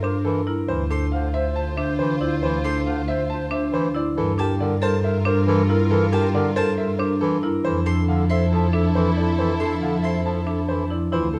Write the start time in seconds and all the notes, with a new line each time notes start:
Already playing: G2 F4 A#4 E5
0.03 D4 A#4 C5
0.25 E3 A4 A#4
0.47 E4 A#4
0.68 D2 E3 F4 C5
0.90 D4 A4 C5 C6
1.12 D3 C5 F5
1.34 C5 E5
1.56 C5 A5
1.77 D4 C5 E5
1.99 E3 C5
2.20 E4 C5 D5
2.43 E3 C5
2.64 D4 A4 C5 C6
2.86 D3 C5 F5
3.08 C5 E5
3.30 C5 A5
3.51 D4 C5 E5
3.73 E3 C5
3.95 E4 D5
4.17 G2 E3 F4 A4 A#4
4.38 D4 G4 A#4 A5
4.60 D3 A#4 D5
4.81 A4 A#4 C5 A5
5.02 A#4 E5
5.25 D4 A#4 C5
5.46 E3 A4 A#4
5.69 E4 A#4
5.90 E3 A4 A#4
6.12 D4 G4 A#4 A5
6.34 D3 A#4 D5
6.55 A4 A#4 C5 A5
6.78 A#4 E5
6.99 D4 A#4 C5
7.21 E3 A4 A#4
7.43 E4 A#4
7.64 F2 E3 E4 A4 C5
7.85 D4 A4 C6
8.08 D3 A4 F5
8.30 A4 C5 E5 C6
8.51 F3 A4 A5
8.72 D4 A4 E5
8.95 E3 A4 C5
9.16 E4 A4 D5
9.38 E3 A4 C5
9.59 D4 A4 C6
9.81 D3 A4 F5
10.03 A4 C5 E5 C6
10.24 F3 A4 A5
10.46 D4 A4 E5
10.68 E3 A4 C5
10.90 E4 D5
11.12 D2 E3 E4 F4 C5
11.33 F4 A4